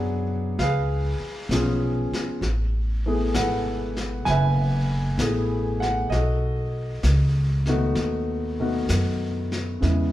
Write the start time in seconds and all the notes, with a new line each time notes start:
Already playing: F#2 F#3 B3 D4 G#4 B4 D5 F#5
0.59 C#2 G#4 B4 F5, brush sweep, snare
1.20 muted upright bass stroke
1.49 B1 F3 B3 C#4 G#4, snare, hi-hat pedal
2.12 muted upright bass stroke, snare
2.41 A1, brush sweep, snare
3.06 E3 A3 B3 G#4
3.34 G#1 A4 B4 F#5, snare, hi-hat pedal
3.97 snare
4.25 F#1 G#5, brush sweep, snare
4.30 B4 E5
5.18 A1 E3 A3 B3 G#4, snare, hi-hat pedal
5.80 F#5, snare
6.10 B1 D#5, brush sweep, snare
6.15 F#4 A4
7.03 C#2, snare, hi-hat pedal
7.66 D#3 A3 B3 F#4, snare
7.95 D#2, brush sweep, snare
8.60 D#3 A3 B3 F#4
8.89 F#2, snare, hi-hat pedal
9.52 snare
9.80 E2 C#3 G#3 B3 E4, brush sweep, snare